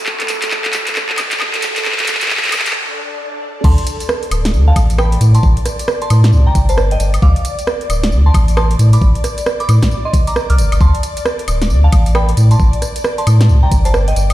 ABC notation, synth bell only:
X:1
M:4/4
L:1/16
Q:"Swing 16ths" 1/4=134
K:Dm
V:1 name="Synth bell"
z16 | z16 | [ac']2 z6 z [fa]2 z [g=b]2 z [ac']- | [ac'] z4 [ac']2 z2 [gb] z [ca] z [_eg]2 z |
[fd']2 z6 z [ac']2 z [ac']2 z [=bd']- | [=bd'] z4 [bd']2 z2 [_ec'] z [_bd'] z [d'f']2 z | [ac']2 z6 z [fa]2 z [g=b]2 z [ac']- | [ac'] z4 [ac']2 z2 [gb] z [ca] z [_eg]2 z |]